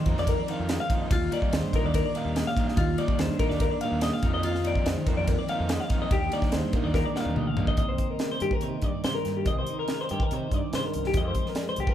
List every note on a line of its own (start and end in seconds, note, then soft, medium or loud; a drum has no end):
0.00 0.27 F2 medium
0.00 1.54 D#3 medium
0.00 0.52 D#4 medium
0.06 0.15 F2 medium
0.06 0.35 F3 medium
0.06 0.18 A#3 medium
0.06 0.35 A#3 medium
0.06 0.35 C4 medium
0.06 0.34 D#4 medium
0.06 0.18 A#4 medium
0.06 kick medium
0.06 ride medium
0.17 0.35 F2 medium
0.17 0.70 C4 soft
0.17 0.29 D5 medium
0.17 snare soft
0.27 0.89 F2 medium
0.27 0.39 A#4 medium
0.27 kick medium
0.27 ride medium
0.40 0.49 D5 medium
0.48 0.76 F3 medium
0.48 0.76 A#3 medium
0.48 0.76 C4 medium
0.48 0.76 D#4 loud
0.48 0.70 F5 medium
0.48 ride medium
0.52 1.35 D#4 medium
0.59 0.77 F2 medium
0.69 0.81 A#3 medium
0.69 0.80 D#5 medium
0.69 snare loud
0.69 ride medium
0.80 0.91 C4 soft
0.80 1.02 F5 medium
0.90 1.09 F2 medium
0.90 1.12 F3 medium
0.90 1.11 A#3 medium
0.90 1.11 C4 medium
0.90 1.11 D#4 medium
0.90 kick medium
0.90 ride medium
1.02 1.12 D#5 medium
1.11 1.28 D#2 medium
1.11 2.78 D#2 medium
1.11 1.32 F4 medium
1.11 kick loud
1.11 ride medium
1.31 1.59 D#3 medium
1.31 1.59 G3 medium
1.31 1.59 A#3 medium
1.31 1.59 D#4 medium
1.31 1.74 G4 soft
1.31 1.54 D5 medium
1.31 ride medium
1.42 kick medium
1.53 1.61 D#2 medium
1.53 3.19 D#3 medium
1.53 1.94 D4 medium
1.53 1.74 C5 medium
1.53 snare medium
1.53 ride medium
1.63 1.71 G2 medium
1.73 1.82 A#1 medium
1.73 2.01 D#3 medium
1.73 2.01 G3 medium
1.73 2.01 A#3 medium
1.73 2.00 D#4 medium
1.73 2.38 F4 medium
1.73 1.85 A#4 medium
1.73 kick medium
1.73 ride medium
1.84 2.01 D#2 medium
1.84 1.95 D5 medium
1.94 2.57 D4 medium
1.94 2.05 A#4 medium
1.94 kick medium
1.94 ride medium
2.06 2.16 D5 medium
2.15 2.78 A#2 medium
2.15 2.43 D#3 medium
2.15 2.43 G3 medium
2.15 2.43 A#3 medium
2.15 2.42 D#4 medium
2.15 2.36 F5 medium
2.15 ride medium
2.25 2.42 D#2 medium
2.36 2.76 G4 medium
2.36 2.47 D#5 medium
2.36 snare medium
2.36 ride medium
2.47 2.67 F5 medium
2.47 snare soft
2.57 2.85 D#3 medium
2.57 2.85 G3 medium
2.57 2.85 A#3 medium
2.57 2.76 D4 medium
2.57 2.85 D#4 medium
2.57 kick medium
2.57 ride medium
2.67 2.78 D#5 medium
2.67 snare soft
2.77 2.94 D#2 medium
2.77 4.24 D#2 medium
2.77 2.98 F4 medium
2.77 kick loud
2.77 ride medium
2.98 3.26 D#3 medium
2.98 3.26 G3 medium
2.98 3.26 A#3 medium
2.98 3.26 D#4 medium
2.98 3.41 G4 medium
2.98 3.19 D5 medium
2.98 ride medium
3.08 kick medium
3.19 3.28 D#2 medium
3.19 4.66 D#3 medium
3.19 3.62 D4 medium
3.19 3.39 C5 medium
3.19 snare loud
3.19 ride medium
3.28 3.38 G2 medium
3.39 3.48 A#1 medium
3.39 3.68 D#3 medium
3.39 3.68 G3 medium
3.39 3.68 A#3 medium
3.39 3.67 D#4 medium
3.39 3.51 D#4 soft
3.39 3.50 A#4 medium
3.39 kick medium
3.39 ride medium
3.49 3.67 D#2 medium
3.49 4.03 F4 medium
3.49 3.60 D5 medium
3.49 snare soft
3.60 4.22 D4 medium
3.60 3.72 A#4 medium
3.60 kick medium
3.60 ride medium
3.71 3.81 D5 medium
3.81 4.24 A#2 medium
3.81 4.10 D#3 medium
3.81 4.10 G3 medium
3.81 4.09 A#3 medium
3.81 4.09 D#4 medium
3.81 4.02 F5 medium
3.81 ride medium
3.92 4.09 D#2 medium
4.01 4.22 G4 medium
4.01 4.13 D#5 medium
4.01 snare loud
4.01 ride medium
4.13 4.34 F5 medium
4.13 snare soft
4.22 4.74 F2 medium
4.22 5.26 F2 medium
4.22 4.52 F3 medium
4.22 4.51 A#3 medium
4.22 4.51 C4 medium
4.22 4.51 D#4 medium
4.22 kick medium
4.22 ride medium
4.34 4.44 D#5 medium
4.43 4.88 D#4 medium
4.43 4.65 F4 medium
4.43 ride medium
4.55 snare soft
4.64 6.11 D#3 medium
4.64 4.93 F3 medium
4.64 4.93 A#3 medium
4.64 4.93 C4 medium
4.64 5.06 C4 medium
4.64 4.92 D#4 medium
4.64 4.87 D5 medium
4.64 ride medium
4.75 kick medium
4.86 4.95 F2 medium
4.86 5.48 D#4 medium
4.86 5.07 C5 medium
4.86 snare loud
4.86 ride medium
4.97 5.06 D#3 medium
5.07 5.15 F2 medium
5.07 5.35 F3 medium
5.07 5.35 A#3 medium
5.07 5.70 C4 medium
5.07 5.35 C4 medium
5.07 5.34 D#4 medium
5.07 5.17 A#4 medium
5.07 kick medium
5.07 ride medium
5.17 5.35 F2 medium
5.17 5.28 D5 medium
5.27 5.88 F2 medium
5.27 5.39 A#4 medium
5.27 kick medium
5.27 ride medium
5.39 5.49 D5 medium
5.48 5.77 F3 medium
5.48 5.77 A#3 medium
5.48 5.76 C4 medium
5.48 6.14 D#4 medium
5.48 5.76 D#4 medium
5.48 5.70 F5 medium
5.48 ride medium
5.60 5.77 F2 medium
5.69 5.89 C4 medium
5.69 5.80 D#5 medium
5.69 snare loud
5.69 ride medium
5.80 6.01 F5 medium
5.90 6.09 F2 medium
5.90 6.12 F3 medium
5.90 6.12 A#3 medium
5.90 6.12 C4 medium
5.90 6.12 D#4 medium
5.90 kick medium
5.90 ride medium
6.02 6.12 D#5 medium
6.11 6.28 D#2 medium
6.11 7.79 D#2 medium
6.11 6.53 D#3 medium
6.11 7.77 A#3 medium
6.11 6.54 D4 medium
6.11 6.33 G4 medium
6.11 6.31 G4 medium
6.11 kick loud
6.11 ride medium
6.32 6.60 D#3 medium
6.32 6.60 G3 medium
6.32 6.60 A#3 medium
6.32 6.59 D#4 medium
6.32 6.73 G4 medium
6.32 6.54 D5 medium
6.32 ride medium
6.42 kick medium
6.42 snare soft
6.52 6.62 D#2 medium
6.52 7.77 D#3 medium
6.52 6.93 D4 medium
6.52 6.73 C5 medium
6.52 snare medium
6.52 ride medium
6.65 6.73 G2 medium
6.73 6.82 A#1 medium
6.73 7.02 D#3 medium
6.73 7.02 G3 medium
6.73 7.02 A#3 medium
6.73 7.01 D#4 medium
6.73 7.36 G4 medium
6.73 6.84 A#4 medium
6.73 kick medium
6.73 ride medium
6.84 7.02 D#2 medium
6.84 6.95 D5 medium
6.94 7.57 D4 medium
6.94 7.05 A#4 medium
6.94 kick medium
6.94 snare medium
7.06 7.17 D5 medium
7.14 7.76 A#2 medium
7.14 7.44 D#3 medium
7.14 7.43 G3 medium
7.14 7.43 A#3 medium
7.14 7.43 D#4 medium
7.14 7.37 F5 medium
7.14 snare medium
7.25 7.34 D#2 medium
7.25 mid tom medium
7.36 7.55 D2 medium
7.36 7.77 G4 medium
7.36 7.47 D#5 medium
7.36 mid tom medium
7.47 7.68 F5 medium
7.57 7.76 C2 medium
7.57 7.79 D#3 medium
7.57 7.79 G3 medium
7.57 7.79 A#3 medium
7.57 7.77 D4 medium
7.57 7.79 D#4 medium
7.57 floor tom medium
7.67 7.77 D#5 medium
7.67 kick medium
7.76 7.95 C2 medium
7.76 8.41 C3 medium
7.76 8.40 D#3 medium
7.76 9.44 A#3 medium
7.76 7.99 D#4 medium
7.76 8.21 G4 medium
7.76 7.89 D#5 medium
7.76 kick loud
7.76 closed hi-hat medium
7.89 8.11 C5 medium
7.98 8.63 D#4 medium
7.98 kick medium
7.98 closed hi-hat medium
8.11 8.31 A#4 medium
8.19 9.90 G4 medium
8.19 snare medium
8.19 closed hi-hat medium
8.32 8.42 C5 medium
8.40 8.50 G2 medium
8.40 10.09 D#3 medium
8.40 8.53 G4 medium
8.40 closed hi-hat medium
8.51 8.63 A#4 medium
8.51 kick medium
8.61 8.80 C3 medium
8.61 9.70 D#4 medium
8.61 8.84 C5 medium
8.61 closed hi-hat medium
8.82 8.92 G2 medium
8.82 9.44 G2 medium
8.82 9.04 D5 medium
8.82 kick medium
8.82 closed hi-hat soft
9.04 9.13 C3 medium
9.04 9.15 C5 medium
9.04 snare loud
9.04 closed hi-hat medium
9.15 9.37 A#4 medium
9.25 9.48 G2 medium
9.25 snare soft
9.25 closed hi-hat medium
9.37 9.47 G4 medium
9.46 9.64 C2 medium
9.46 10.10 C3 medium
9.46 9.58 D#5 medium
9.46 kick loud
9.46 closed hi-hat medium
9.59 9.79 C5 medium
9.67 10.31 D#4 soft
9.67 closed hi-hat medium
9.79 10.00 A#4 medium
9.88 11.17 G4 medium
9.88 snare medium
9.88 closed hi-hat medium
10.01 10.11 C5 medium
10.09 10.19 G2 medium
10.09 11.15 D#3 medium
10.09 10.23 G4 medium
10.09 closed hi-hat medium
10.20 10.33 A#4 medium
10.20 kick medium
10.31 10.49 C3 medium
10.31 11.17 D#4 medium
10.31 10.54 C5 medium
10.31 closed hi-hat medium
10.52 10.60 G2 medium
10.52 11.12 G2 medium
10.52 10.74 D5 medium
10.52 kick medium
10.52 closed hi-hat soft
10.73 10.82 C3 medium
10.73 10.86 C5 medium
10.73 snare medium
10.73 closed hi-hat medium
10.86 11.05 A#4 medium
10.94 11.16 C2 medium
10.94 closed hi-hat medium
11.04 11.16 G4 medium
11.04 snare soft
11.14 11.32 F2 medium
11.14 11.94 F2 medium
11.14 11.79 F3 medium
11.14 11.94 G#3 medium
11.14 11.38 D#4 medium
11.14 11.27 D#5 medium
11.14 kick loud
11.14 closed hi-hat medium
11.18 11.59 G4 medium
11.28 11.49 C5 medium
11.35 11.94 D#4 medium
11.35 kick medium
11.35 closed hi-hat medium
11.46 11.69 A#4 medium
11.46 snare soft
11.55 snare loud
11.55 closed hi-hat medium
11.59 11.94 G#4 medium
11.69 11.79 C5 medium
11.76 11.87 C2 medium
11.76 11.94 F3 medium
11.76 11.89 G4 medium
11.76 closed hi-hat medium
11.87 11.94 A#4 medium
11.87 kick medium